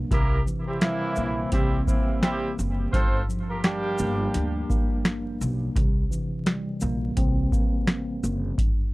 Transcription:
0.00 0.13 A#3 medium
0.00 0.11 D4 medium
0.11 0.38 C2 loud
0.11 1.87 C3 medium
0.11 0.40 A#3 loud
0.11 0.40 E4 loud
0.11 0.40 G4 loud
0.11 0.40 A#4 loud
0.11 kick loud
0.11 closed hi-hat medium
0.46 2.23 E3 medium
0.46 shaker medium
0.67 0.78 G3 medium
0.67 0.78 C4 medium
0.67 0.78 E4 medium
0.67 0.78 G4 medium
0.81 1.48 E3 loud
0.81 2.58 G3 medium
0.81 1.48 A#3 loud
0.81 1.48 C4 loud
0.81 1.48 E4 loud
0.81 snare loud
0.81 closed hi-hat medium
1.16 1.44 A#1 medium
1.16 1.86 A#3 loud
1.16 shaker medium
1.52 1.79 C2 medium
1.52 1.81 G3 loud
1.52 2.93 C4 medium
1.52 1.81 C4 loud
1.52 1.81 E4 loud
1.52 1.81 G4 loud
1.52 kick medium
1.52 closed hi-hat medium
1.87 2.16 E3 medium
1.87 2.93 A#3 medium
1.87 2.16 A#3 medium
1.87 2.16 C4 medium
1.87 2.16 E4 medium
1.87 kick medium
1.87 shaker medium
2.23 2.51 G3 loud
2.23 2.51 C4 loud
2.23 2.51 E4 loud
2.23 2.51 G4 loud
2.23 snare loud
2.23 closed hi-hat medium
2.59 2.85 F#1 loud
2.59 shaker medium
2.93 3.20 G1 loud
2.93 4.70 G2 medium
2.93 3.21 C4 loud
2.93 3.21 F4 loud
2.93 3.21 A4 loud
2.93 3.21 C5 loud
2.93 kick loud
2.93 closed hi-hat medium
3.29 5.05 F3 medium
3.29 shaker medium
3.49 3.61 A#3 medium
3.49 3.61 F4 medium
3.49 3.61 G4 medium
3.49 3.61 A#4 medium
3.64 5.40 G3 medium
3.64 4.66 G3 loud
3.64 4.66 A#3 loud
3.64 4.66 D4 loud
3.64 4.66 G4 loud
3.64 snare loud
3.64 closed hi-hat medium
3.98 4.26 G1 loud
3.98 4.69 A#3 medium
3.98 shaker medium
4.34 4.62 D2 medium
4.34 5.75 D4 medium
4.34 snare soft
4.34 closed hi-hat medium
4.70 5.76 A#3 medium
4.70 kick medium
4.70 shaker medium
5.05 snare loud
5.05 closed hi-hat medium
5.41 5.68 B1 loud
5.41 shaker medium
5.76 6.03 C2 loud
5.76 7.52 C3 medium
5.76 kick loud
5.76 closed hi-hat medium
6.11 7.87 E3 medium
6.11 shaker medium
6.46 8.22 G3 medium
6.46 snare loud
6.46 closed hi-hat medium
6.81 7.09 A#1 loud
6.81 7.51 A#3 loud
6.81 shaker medium
7.17 7.44 C2 medium
7.17 8.58 C4 medium
7.17 kick medium
7.17 closed hi-hat medium
7.52 8.58 A#3 medium
7.52 kick medium
7.52 shaker medium
7.87 snare loud
7.87 closed hi-hat medium
8.23 8.50 F#1 loud
8.23 shaker medium
8.58 8.94 G2 medium
8.58 kick loud
8.58 closed hi-hat medium

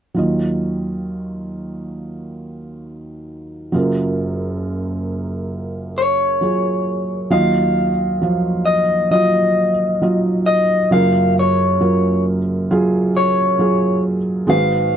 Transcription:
0.14 3.70 D#2 soft
0.14 3.70 D#3 soft
0.14 3.69 F#3 soft
0.14 3.70 F4 soft
0.18 3.71 D#5 soft
3.72 7.28 F#1 soft
3.72 7.28 F#2 soft
3.72 6.37 F#3 soft
3.72 6.38 F4 soft
3.72 6.39 A#4 medium
5.98 7.31 C#5 medium
6.41 7.29 F#3 soft
6.41 7.30 F4 soft
6.41 7.33 G#4 soft
7.30 10.88 D#2 soft
7.30 10.87 D#3 soft
7.30 7.89 F#3 medium
7.30 7.90 F4 medium
7.30 7.90 D#5 medium
7.30 8.65 F5 medium
8.21 8.80 F3 soft
8.21 8.80 F#3 soft
8.21 8.80 F5 soft
8.65 9.10 D#5 medium
9.11 9.69 F#3 soft
9.11 9.70 F4 soft
9.11 10.43 D#5 medium
9.11 9.70 D#5 medium
10.02 10.59 F#3 medium
10.02 10.60 F4 soft
10.02 10.60 D#5 medium
10.46 10.92 D#5 medium
10.91 14.45 F#1 soft
10.91 14.45 F#2 soft
10.91 11.49 F#3 medium
10.91 11.49 F4 medium
10.91 11.50 A#4 medium
10.91 11.34 F5 medium
11.39 12.23 C#5 medium
11.81 12.38 F#3 soft
11.81 12.38 F4 soft
11.81 12.39 A#4 medium
12.71 13.28 F#3 medium
12.71 13.28 F4 medium
12.71 13.28 G#4 medium
13.17 14.01 C#5 medium
13.59 14.16 F#3 medium
13.59 14.17 F4 soft
13.59 14.17 G#4 medium
14.47 14.97 G#1 soft
14.47 14.97 G#2 medium
14.47 14.97 G#3 medium
14.47 14.97 F#4 medium
14.47 14.97 B4 medium
14.47 14.97 F5 medium

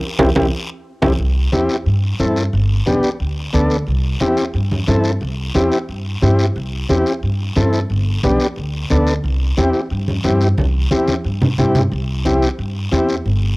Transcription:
0.19 0.31 C2 medium
0.19 0.30 C4 loud
0.19 0.30 E4 loud
0.19 0.30 G4 loud
0.19 high conga loud
0.19 high timbale loud
0.35 0.48 C2 medium
0.35 0.46 C4 loud
0.35 0.46 E4 loud
0.35 0.47 G4 loud
0.35 high conga medium
0.35 high timbale loud
0.35 long guiro medium
1.02 1.15 C2 medium
1.02 1.13 C4 medium
1.02 1.13 E4 loud
1.02 1.13 G4 loud
1.02 high conga loud
1.02 high timbale medium
1.02 long guiro loud
1.19 1.46 C2 medium
1.19 long guiro medium
1.52 1.66 E2 medium
1.52 1.76 C4 medium
1.52 1.76 E4 medium
1.52 1.76 G4 medium
1.52 high conga medium
1.52 short guiro medium
1.69 short guiro medium
1.86 2.13 G2 medium
1.86 long guiro medium
2.19 2.46 G2 loud
2.19 2.43 C4 medium
2.19 2.43 E4 medium
2.19 2.43 A4 medium
2.19 high conga medium
2.19 short guiro medium
2.36 short guiro medium
2.53 2.80 G1 medium
2.53 long guiro medium
2.86 3.00 B1 medium
2.86 3.10 B3 medium
2.86 3.10 D4 medium
2.86 3.10 G4 medium
2.86 high conga medium
2.86 short guiro medium
3.03 short guiro medium
3.20 3.47 D2 medium
3.20 long guiro medium
3.53 3.81 D2 loud
3.53 3.77 B3 medium
3.53 3.77 D4 medium
3.53 3.77 A4 medium
3.53 high conga medium
3.53 short guiro medium
3.70 short guiro medium
3.87 4.14 C2 medium
3.87 long guiro medium
4.20 4.34 E2 medium
4.20 4.44 C4 medium
4.20 4.44 E4 medium
4.20 4.45 G4 medium
4.20 high conga medium
4.20 short guiro medium
4.37 short guiro medium
4.54 4.81 G2 medium
4.54 long guiro medium
4.72 high conga medium
4.87 5.15 G2 medium
4.87 5.11 C4 medium
4.87 5.12 E4 medium
4.87 5.12 A4 medium
4.87 high conga medium
4.87 short guiro medium
5.04 short guiro medium
5.21 5.48 C2 medium
5.21 long guiro medium
5.55 5.69 E2 medium
5.55 5.78 C4 medium
5.55 5.78 E4 medium
5.55 5.79 G4 medium
5.55 high conga medium
5.55 short guiro medium
5.72 short guiro medium
5.89 6.16 G2 medium
5.89 long guiro medium
6.22 6.49 G2 medium
6.22 6.45 C4 medium
6.22 6.46 E4 medium
6.22 6.46 G4 medium
6.22 high conga medium
6.22 short guiro medium
6.39 short guiro medium
6.56 6.83 C2 medium
6.56 long guiro medium
6.89 7.03 E2 medium
6.89 7.13 C4 medium
6.89 7.13 E4 medium
6.89 7.13 G4 medium
6.89 high conga medium
6.89 short guiro medium
7.06 short guiro medium
7.23 7.50 G2 medium
7.23 long guiro medium
7.56 7.83 G2 medium
7.56 7.80 C4 medium
7.56 7.80 E4 medium
7.56 7.80 A4 medium
7.56 high conga medium
7.56 short guiro medium
7.73 short guiro medium
7.90 8.17 G1 medium
7.90 long guiro medium
8.23 8.37 B1 medium
8.23 8.47 B3 medium
8.23 8.47 D4 medium
8.23 8.47 G4 medium
8.23 high conga medium
8.23 short guiro medium
8.40 short guiro medium
8.56 8.84 D2 medium
8.56 long guiro medium
8.90 9.17 D2 loud
8.90 9.14 B3 medium
8.90 9.14 D4 medium
8.90 9.14 A4 medium
8.90 high conga medium
8.90 short guiro medium
9.07 short guiro medium
9.24 9.51 C2 medium
9.24 long guiro medium
9.57 9.71 E2 medium
9.57 9.81 C4 medium
9.57 9.81 E4 medium
9.57 9.81 G4 medium
9.57 high conga medium
9.57 short guiro medium
9.73 short guiro medium
9.90 10.18 G2 medium
9.90 long guiro medium
10.08 high conga medium
10.24 10.51 G2 loud
10.24 10.48 C4 medium
10.24 10.48 E4 medium
10.24 10.48 G4 medium
10.24 high conga medium
10.24 short guiro medium
10.41 short guiro medium
10.57 10.85 C2 medium
10.57 high conga medium
10.57 long guiro medium
10.91 11.05 E2 medium
10.91 11.14 C4 medium
10.91 11.15 E4 medium
10.91 11.15 G4 medium
10.91 high conga medium
10.91 short guiro medium
11.07 high conga medium
11.07 short guiro medium
11.24 11.52 G2 medium
11.24 long guiro medium
11.41 low conga medium
11.58 11.85 G2 medium
11.58 11.82 C4 medium
11.58 11.82 E4 medium
11.58 11.82 G4 medium
11.58 low conga medium
11.58 short guiro medium
11.75 low conga medium
11.75 short guiro medium
11.91 12.45 C2 medium
11.91 long guiro medium
12.25 12.49 C4 medium
12.25 12.49 E4 medium
12.25 12.49 G4 medium
12.25 high conga medium
12.25 short guiro medium
12.42 short guiro medium
12.59 12.86 G2 medium
12.59 long guiro medium
12.92 13.19 E2 loud
12.92 13.15 C4 medium
12.92 13.16 E4 medium
12.92 13.16 G4 medium
12.92 high conga medium
12.92 short guiro medium
13.09 short guiro medium
13.26 13.57 G1 medium
13.26 long guiro medium

